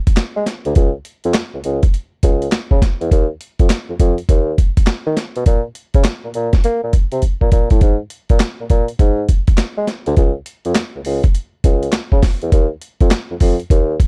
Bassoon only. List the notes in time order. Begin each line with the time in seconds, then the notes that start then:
0.36 G#3
0.66 D2
0.76 C#2
1.25 F2
1.54 C#2
1.65 C#2
2.23 C#2
2.71 C#3
3.01 E2
3.12 D#2
3.60 F2
3.89 F2
4.00 F2
4.29 D#2
5.07 D#3
5.36 B2
5.47 A#2
5.95 C#3
6.24 A#2
6.35 A#2
6.65 A#3
6.84 A#2
7.12 C3
7.42 A#2
7.52 A#2
7.71 A2
7.82 G#2
8.30 A#2
8.61 A#2
8.70 A#2
9.00 G#2
9.78 G#3
10.07 D2
10.17 C#2
10.66 F2
10.95 C#2
11.06 C#2
11.64 C#2
12.12 C#3
12.43 E2
12.52 D#2
13.01 F2
13.31 F2
13.41 F2
13.71 D#2